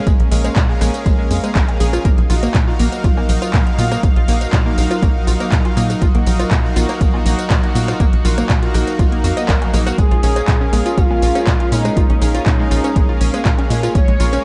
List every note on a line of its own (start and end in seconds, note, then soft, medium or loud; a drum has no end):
0.00 2.01 G#3 medium
0.00 2.01 A#3 medium
0.00 2.01 C#4 medium
0.07 0.16 A#1 loud
0.07 0.13 G#3 medium
0.07 kick loud
0.07 closed hi-hat medium
0.07 tambourine soft
0.20 0.28 A#1 medium
0.20 closed hi-hat soft
0.31 0.50 A#1 loud
0.31 0.35 G#3 medium
0.31 0.54 C#4 medium
0.31 0.54 G#4 medium
0.31 0.54 A#4 medium
0.31 0.54 F5 medium
0.31 open hi-hat loud
0.31 tambourine medium
0.44 0.50 G#3 medium
0.44 closed hi-hat medium
0.44 tambourine soft
0.44 high bongo medium
0.56 0.75 A#2 loud
0.56 kick loud
0.56 clap loud
0.56 closed hi-hat medium
0.56 tambourine soft
0.69 0.73 G#3 medium
0.69 0.79 C#4 medium
0.69 0.79 G#4 medium
0.69 0.79 A#4 medium
0.69 0.79 F5 medium
0.81 0.91 A#1 loud
0.81 0.87 G#3 medium
0.81 1.28 C#4 medium
0.81 1.28 G#4 medium
0.81 1.28 A#4 medium
0.81 1.28 F5 medium
0.81 cross-stick medium
0.81 open hi-hat loud
0.81 tambourine medium
0.81 high conga medium
0.94 closed hi-hat medium
0.94 tambourine soft
0.94 high bongo soft
1.06 1.24 A#1 loud
1.06 1.10 G#3 medium
1.06 kick loud
1.06 closed hi-hat medium
1.06 tambourine soft
1.19 1.25 G#3 medium
1.31 1.40 F2 medium
1.31 1.34 G#3 medium
1.31 1.77 C#4 medium
1.31 1.77 G#4 medium
1.31 1.77 A#4 medium
1.31 1.77 F5 medium
1.31 open hi-hat loud
1.31 tambourine medium
1.44 1.49 G#3 medium
1.44 closed hi-hat soft
1.44 tambourine soft
1.44 high bongo medium
1.44 high conga medium
1.55 1.74 A#1 loud
1.55 1.62 A#4 medium
1.55 kick loud
1.55 clap loud
1.55 closed hi-hat medium
1.55 tambourine soft
1.68 closed hi-hat soft
1.68 cowbell medium
1.80 1.99 A#1 loud
1.80 2.03 C#4 medium
1.80 1.86 G#4 loud
1.80 2.03 G#4 medium
1.80 2.03 A#4 medium
1.80 2.03 F5 medium
1.80 open hi-hat loud
1.80 tambourine medium
1.93 1.97 F4 medium
1.93 cross-stick medium
1.93 closed hi-hat medium
1.93 tambourine soft
1.93 high bongo medium
2.05 2.15 A#1 loud
2.05 9.94 F#3 medium
2.05 2.11 A#3 medium
2.05 9.94 D#4 medium
2.05 5.98 F5 medium
2.05 kick loud
2.05 closed hi-hat medium
2.05 tambourine soft
2.18 2.27 A#1 medium
2.18 closed hi-hat soft
2.30 2.48 A#1 loud
2.30 2.52 D#4 medium
2.30 2.34 F4 medium
2.30 2.52 F#4 medium
2.30 2.52 A#4 medium
2.30 2.52 F5 medium
2.30 open hi-hat loud
2.30 tambourine medium
2.43 2.48 A#3 medium
2.43 closed hi-hat medium
2.43 tambourine soft
2.43 high bongo medium
2.54 2.73 A#2 loud
2.54 kick loud
2.54 clap loud
2.54 closed hi-hat medium
2.54 tambourine soft
2.68 2.78 D#4 medium
2.68 2.71 F4 medium
2.68 2.78 F#4 medium
2.68 2.78 A#4 medium
2.68 2.78 F5 medium
2.79 2.89 A#1 loud
2.79 2.86 A#3 medium
2.79 3.26 D#4 medium
2.79 3.26 F#4 medium
2.79 3.26 A#4 medium
2.79 3.26 F5 medium
2.79 open hi-hat loud
2.79 tambourine medium
2.79 high conga medium
2.92 closed hi-hat soft
2.92 tambourine soft
2.92 high bongo soft
3.04 3.23 A#1 loud
3.04 3.08 F4 medium
3.04 kick loud
3.04 closed hi-hat medium
3.04 tambourine soft
3.17 3.23 A#3 medium
3.17 cowbell medium
3.17 high conga medium
3.29 3.39 A#1 medium
3.29 3.76 D#4 medium
3.29 3.76 F#4 medium
3.29 3.76 A#4 medium
3.29 3.76 F5 medium
3.29 open hi-hat loud
3.29 tambourine medium
3.42 3.45 F4 medium
3.42 closed hi-hat soft
3.42 tambourine soft
3.42 high bongo medium
3.54 3.63 A#2 loud
3.54 3.60 A#3 medium
3.54 kick loud
3.54 clap loud
3.54 closed hi-hat medium
3.54 tambourine soft
3.67 closed hi-hat soft
3.78 3.97 A#2 loud
3.78 4.01 D#4 medium
3.78 3.82 F4 medium
3.78 4.01 F#4 medium
3.78 4.01 A#4 medium
3.78 4.01 F5 medium
3.78 open hi-hat loud
3.78 tambourine medium
3.78 high conga medium
3.92 3.97 A#3 medium
3.92 cross-stick medium
3.92 closed hi-hat medium
3.92 tambourine soft
3.92 high bongo medium
4.03 4.13 A#1 medium
4.03 kick loud
4.03 closed hi-hat medium
4.03 tambourine soft
4.16 4.25 A#1 medium
4.16 4.20 F4 medium
4.16 closed hi-hat soft
4.28 4.47 A#1 loud
4.28 4.34 A#3 medium
4.28 4.51 D#4 medium
4.28 4.51 F#4 medium
4.28 4.51 A#4 medium
4.28 4.51 F5 medium
4.28 open hi-hat loud
4.28 tambourine medium
4.41 closed hi-hat medium
4.41 tambourine soft
4.41 high bongo soft
4.53 4.72 A#2 loud
4.53 4.57 F4 medium
4.53 kick loud
4.53 clap loud
4.53 closed hi-hat medium
4.53 tambourine soft
4.66 4.72 A#3 medium
4.66 4.76 D#4 medium
4.66 4.76 F#4 medium
4.66 4.76 A#4 medium
4.66 4.76 F5 medium
4.78 4.87 A#1 loud
4.78 5.25 D#4 medium
4.78 5.25 F#4 medium
4.78 5.25 A#4 medium
4.78 5.25 F5 medium
4.78 open hi-hat loud
4.78 tambourine medium
4.91 4.94 F4 medium
4.91 closed hi-hat medium
4.91 tambourine soft
4.91 high bongo medium
5.02 5.21 A#1 loud
5.02 5.09 A#3 medium
5.02 kick loud
5.02 closed hi-hat medium
5.02 tambourine soft
5.27 5.37 A#1 medium
5.27 5.74 D#4 medium
5.27 5.31 F4 medium
5.27 5.74 F#4 medium
5.27 5.74 A#4 medium
5.27 5.74 F5 medium
5.27 open hi-hat loud
5.27 tambourine medium
5.40 5.46 A#3 medium
5.40 closed hi-hat medium
5.40 tambourine soft
5.40 high bongo medium
5.40 high conga medium
5.52 5.62 A#2 loud
5.52 kick loud
5.52 clap loud
5.52 closed hi-hat medium
5.52 tambourine soft
5.65 5.69 F4 medium
5.65 closed hi-hat soft
5.65 cowbell medium
5.77 5.96 A#2 medium
5.77 5.83 A#3 medium
5.77 6.00 D#4 medium
5.77 6.00 F#4 medium
5.77 6.00 A#4 medium
5.77 6.00 F5 medium
5.77 open hi-hat loud
5.77 tambourine medium
5.90 cross-stick medium
5.90 closed hi-hat medium
5.90 tambourine soft
5.90 high bongo soft
6.02 6.11 A#1 loud
6.02 6.05 F4 medium
6.02 9.94 F#4 medium
6.02 kick loud
6.02 closed hi-hat medium
6.02 tambourine soft
6.15 6.23 A#1 medium
6.15 6.20 A#3 medium
6.15 closed hi-hat soft
6.26 6.45 A#1 loud
6.26 6.49 D#4 medium
6.26 6.49 F#4 medium
6.26 6.49 A#4 medium
6.26 6.49 F5 medium
6.26 open hi-hat loud
6.26 tambourine medium
6.39 6.43 F4 medium
6.39 closed hi-hat medium
6.39 tambourine soft
6.39 high bongo medium
6.51 6.70 A#2 loud
6.51 6.58 A#3 medium
6.51 kick loud
6.51 clap loud
6.51 closed hi-hat medium
6.51 tambourine soft
6.64 6.74 D#4 medium
6.64 6.74 F#4 medium
6.64 6.74 A#4 medium
6.64 6.74 F5 medium
6.76 6.86 A#1 loud
6.76 7.23 D#4 medium
6.76 6.80 F4 medium
6.76 7.23 F#4 medium
6.76 7.23 A#4 medium
6.76 7.23 F5 medium
6.76 open hi-hat loud
6.76 tambourine medium
6.76 high conga medium
6.89 6.95 A#3 medium
6.89 closed hi-hat medium
6.89 tambourine soft
6.89 high bongo medium
7.01 7.19 A#1 loud
7.01 kick loud
7.01 closed hi-hat medium
7.01 tambourine soft
7.14 7.17 F4 medium
7.14 cowbell medium
7.14 high conga medium
7.26 7.35 A#1 medium
7.26 7.32 A#3 medium
7.26 7.72 D#4 medium
7.26 7.72 F#4 medium
7.26 7.72 A#4 medium
7.26 7.72 F5 medium
7.26 open hi-hat loud
7.26 tambourine medium
7.39 closed hi-hat medium
7.39 tambourine soft
7.39 high bongo soft
7.50 7.60 A#2 loud
7.50 7.54 F4 medium
7.50 kick loud
7.50 clap loud
7.50 closed hi-hat medium
7.50 tambourine soft
7.63 7.69 A#3 medium
7.63 closed hi-hat soft
7.75 7.94 A#2 medium
7.75 7.98 D#4 medium
7.75 7.98 F#4 medium
7.75 7.98 A#4 medium
7.75 7.98 F5 medium
7.75 open hi-hat loud
7.75 tambourine medium
7.75 high conga medium
7.88 7.92 F4 medium
7.88 cross-stick medium
7.88 closed hi-hat medium
7.88 tambourine soft
7.88 high bongo medium
8.00 8.10 A#1 loud
8.00 8.06 A#3 medium
8.00 kick loud
8.00 closed hi-hat medium
8.00 tambourine soft
8.13 8.22 A#1 medium
8.13 closed hi-hat soft
8.25 8.43 A#1 loud
8.25 8.48 D#4 medium
8.25 8.29 F4 medium
8.25 8.48 F#4 medium
8.25 8.48 A#4 medium
8.25 8.48 F5 medium
8.25 open hi-hat loud
8.25 tambourine medium
8.38 8.44 A#3 medium
8.38 closed hi-hat medium
8.38 tambourine soft
8.38 high bongo medium
8.49 8.68 A#2 loud
8.49 kick loud
8.49 clap loud
8.49 closed hi-hat medium
8.49 tambourine soft
8.63 8.73 D#4 medium
8.63 8.66 F4 medium
8.63 8.73 F#4 medium
8.63 8.73 A#4 medium
8.63 8.73 F5 medium
8.63 closed hi-hat soft
8.74 8.84 A#1 loud
8.74 8.81 A#3 medium
8.74 9.21 D#4 medium
8.74 9.21 F#4 medium
8.74 9.21 A#4 medium
8.74 9.21 F5 medium
8.74 cross-stick medium
8.74 open hi-hat loud
8.74 tambourine medium
8.87 closed hi-hat medium
8.87 tambourine soft
8.87 high bongo soft
8.99 9.18 A#1 loud
8.99 9.03 F4 medium
8.99 kick loud
8.99 closed hi-hat medium
8.99 tambourine soft
8.99 swell medium
9.12 9.18 A#3 medium
9.12 closed hi-hat soft
9.24 9.34 F2 medium
9.24 9.71 D#4 medium
9.24 9.30 F#4 medium
9.24 9.71 F#4 medium
9.24 9.71 A#4 medium
9.24 9.71 F5 medium
9.24 open hi-hat loud
9.24 tambourine medium
9.37 9.46 D#5 medium
9.37 closed hi-hat medium
9.37 tambourine soft
9.37 high bongo medium
9.37 high conga medium
9.49 9.67 A#1 loud
9.49 9.55 A#4 medium
9.49 kick loud
9.49 clap loud
9.49 closed hi-hat medium
9.49 tambourine soft
9.62 closed hi-hat soft
9.62 cowbell medium
9.74 9.92 A#1 loud
9.74 9.80 A#3 medium
9.74 9.96 D#4 medium
9.74 9.96 F#4 medium
9.74 9.96 A#4 medium
9.74 9.96 F5 medium
9.74 cross-stick medium
9.74 open hi-hat loud
9.74 tambourine medium
9.87 9.92 F#4 loud
9.87 cross-stick medium
9.87 closed hi-hat medium
9.87 tambourine soft
9.87 high bongo medium
9.87 high conga medium
9.98 10.08 A#1 loud
9.98 14.44 G#3 medium
9.98 10.05 G#3 medium
9.98 14.44 A#3 medium
9.98 14.44 C#4 medium
9.98 10.99 G#4 loud
9.98 kick loud
9.98 closed hi-hat medium
9.98 tambourine soft
10.11 10.20 A#1 medium
10.11 10.17 F4 medium
10.11 closed hi-hat soft
10.23 10.42 A#1 loud
10.23 10.27 C#4 medium
10.23 10.46 C#4 medium
10.23 10.46 G#4 medium
10.23 10.46 A#4 medium
10.23 10.46 F5 medium
10.23 open hi-hat loud
10.23 tambourine medium
10.36 10.42 G#3 medium
10.36 closed hi-hat medium
10.36 tambourine soft
10.36 high bongo medium
10.48 10.67 A#2 loud
10.48 10.54 F4 medium
10.48 kick loud
10.48 clap loud
10.48 closed hi-hat medium
10.48 tambourine soft
10.61 10.64 C#4 medium
10.61 10.71 C#4 medium
10.61 10.71 G#4 medium
10.61 10.71 A#4 medium
10.61 10.71 F5 medium
10.73 10.82 A#1 loud
10.73 10.79 G#3 medium
10.73 11.20 C#4 medium
10.73 11.20 G#4 medium
10.73 11.20 A#4 medium
10.73 11.20 F5 medium
10.73 open hi-hat loud
10.73 tambourine medium
10.73 high conga medium
10.86 10.91 F4 medium
10.86 closed hi-hat medium
10.86 tambourine soft
10.86 high bongo soft
10.98 11.16 A#1 loud
10.98 11.01 C#4 medium
10.98 11.73 F4 loud
10.98 kick loud
10.98 closed hi-hat medium
10.98 tambourine soft
11.11 11.16 G#3 medium
11.11 cowbell medium
11.11 high conga medium
11.22 11.32 A#1 medium
11.22 11.69 C#4 medium
11.22 11.29 F4 medium
11.22 11.69 G#4 medium
11.22 11.69 A#4 medium
11.22 11.69 F5 medium
11.22 open hi-hat loud
11.22 tambourine medium
11.35 11.39 C#4 medium
11.35 closed hi-hat medium
11.35 tambourine soft
11.35 high bongo medium
11.47 11.57 A#2 loud
11.47 11.53 G#3 medium
11.47 kick loud
11.47 clap loud
11.47 closed hi-hat medium
11.47 tambourine soft
11.60 11.66 F4 medium
11.60 closed hi-hat soft
11.72 11.91 A#2 loud
11.72 11.76 C#4 medium
11.72 11.95 C#4 medium
11.72 12.37 D#4 loud
11.72 11.95 G#4 medium
11.72 11.95 A#4 medium
11.72 11.95 F5 medium
11.72 open hi-hat loud
11.72 tambourine medium
11.72 high conga medium
11.85 11.91 G#3 medium
11.85 cross-stick medium
11.85 closed hi-hat medium
11.85 tambourine soft
11.85 high bongo medium
11.97 12.06 A#1 medium
11.97 12.03 F4 medium
11.97 kick loud
11.97 closed hi-hat medium
11.97 tambourine soft
12.10 12.18 A#1 medium
12.10 12.13 C#4 medium
12.10 closed hi-hat soft
12.21 12.40 A#1 loud
12.21 12.28 G#3 medium
12.21 12.44 C#4 medium
12.21 12.44 G#4 medium
12.21 12.44 A#4 medium
12.21 12.44 F5 medium
12.21 open hi-hat loud
12.21 tambourine medium
12.35 12.40 F4 medium
12.35 closed hi-hat medium
12.35 tambourine soft
12.35 high bongo soft
12.46 12.65 A#2 loud
12.46 12.50 C#4 medium
12.46 13.11 D#4 loud
12.46 kick loud
12.46 clap loud
12.46 closed hi-hat medium
12.46 tambourine soft
12.59 12.65 G#3 medium
12.59 12.69 C#4 medium
12.59 12.69 G#4 medium
12.59 12.69 A#4 medium
12.59 12.69 F5 medium
12.71 12.81 A#1 loud
12.71 13.18 C#4 medium
12.71 12.77 F4 medium
12.71 13.18 G#4 medium
12.71 13.18 A#4 medium
12.71 13.18 F5 medium
12.71 open hi-hat loud
12.71 tambourine medium
12.84 12.88 C#4 medium
12.84 closed hi-hat medium
12.84 tambourine soft
12.84 high bongo medium
12.96 13.14 A#1 loud
12.96 13.02 G#3 medium
12.96 kick loud
12.96 closed hi-hat medium
12.96 tambourine soft
13.09 13.15 F4 medium
13.21 13.30 A#1 medium
13.21 13.67 C#4 medium
13.21 13.24 C#4 medium
13.21 13.67 G#4 medium
13.21 13.67 A#4 medium
13.21 13.67 F5 medium
13.21 open hi-hat loud
13.21 tambourine medium
13.34 13.39 G#3 medium
13.34 closed hi-hat medium
13.34 tambourine soft
13.34 high bongo medium
13.34 high conga medium
13.45 13.55 A#2 loud
13.45 13.52 F4 medium
13.45 kick loud
13.45 clap loud
13.45 closed hi-hat medium
13.45 tambourine soft
13.59 13.62 C#4 medium
13.59 closed hi-hat soft
13.59 cowbell medium
13.70 13.89 A#2 loud
13.70 13.77 G#3 medium
13.70 13.93 C#4 medium
13.70 13.93 G#4 medium
13.70 13.93 A#4 medium
13.70 13.93 F5 medium
13.70 open hi-hat loud
13.70 tambourine medium
13.83 13.89 F4 medium
13.83 cross-stick medium
13.83 closed hi-hat medium
13.83 tambourine soft
13.83 high bongo soft
13.95 14.05 A#1 loud
13.95 13.99 C#4 medium
13.95 14.44 C#5 loud
13.95 kick loud
13.95 closed hi-hat medium
13.95 tambourine soft
14.08 14.17 A#1 medium
14.08 14.14 G#3 medium
14.08 closed hi-hat soft
14.20 14.38 A#1 loud
14.20 14.43 C#4 medium
14.20 14.26 F4 medium
14.20 14.43 G#4 medium
14.20 14.43 A#4 medium
14.20 14.43 F5 medium
14.20 open hi-hat loud
14.20 tambourine medium
14.33 14.36 C#4 medium
14.33 closed hi-hat medium
14.33 tambourine soft
14.33 high bongo medium